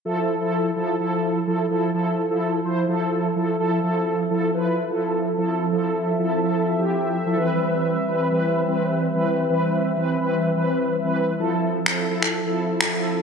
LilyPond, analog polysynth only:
\new Staff \with { instrumentName = "Analog polysynth" } { \time 4/4 \key f \lydian \tempo 4 = 127 <f e' a'>8 r16 <f e' a'>8 r16 <f e' a'>8 <f e' a'>8. r16 <f e' a'>8 <f e' a'>8 | <f e' a'>8 r16 <f e' a'>8 r16 <f e' c''>8 <f e' a'>8. r16 <f e' a'>8 <f e' a'>8 | <f e' a'>8. r16 <f e' a'>8 <f e' b'>8 r16 <f e' a'>8. r16 <f e' a'>8 r16 | <f e' a'>8. r16 <f e' a'>8 <f e' a'>8 r16 <f e' g'>8. r16 <f e' a'>16 <e c' b'>8~ |
<e c' b'>8. r16 <e c' b'>8 <e c' b'>8 r16 <e c' b'>8. r16 <e c' b'>8 r16 | <e c' b'>8. r16 <e c' b'>8 <e c' b'>8 r16 <e c' b'>8. r16 <e c' b'>8 r16 | <f e' a'>8. r16 <f e' a'>8 <f e' a'>8 r16 <f e' a'>8. r16 <f e' a'>8 r16 | }